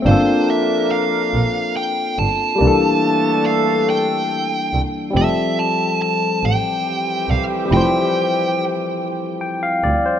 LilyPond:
<<
  \new Staff \with { instrumentName = "Lead electric guitar" } { \time 6/8 \key f \major \tempo 4. = 47 c''8 e''8 f''4 g''8 a''8~ | a''4 f''8 g''4 r8 | e''8 a''8 a''8 g''4 f''8 | g''4 r2 | }
  \new Staff \with { instrumentName = "Tine electric piano" } { \time 6/8 \key f \major << { r2. | r2. | r2. | r2 g''16 f''16 d''16 c''16 | } \\ { <bes c' d' f' a'>2. | <e g bes d' a'>2. | <f g c' g' a'>2. | <f g c' e' c''>2. | } >> }
  \new Staff \with { instrumentName = "Horn section" } { \time 6/8 \key f \major <f bes d' bes'>2~ <f bes d' bes'>8 r8 | <e a d' a'>2~ <e a d' a'>8 r8 | r4. <e g c' g'>4.~ | <e g c' g'>2~ <e g c' g'>8 r8 | }
  \new Staff \with { instrumentName = "Double bass" } { \clef bass \time 6/8 \key f \major g,,4. bes,,4 g,,8 | c,2~ c,8 c,8 | f,,4. a,,4 c,8 | f,,2~ f,,8 d,8 | }
>>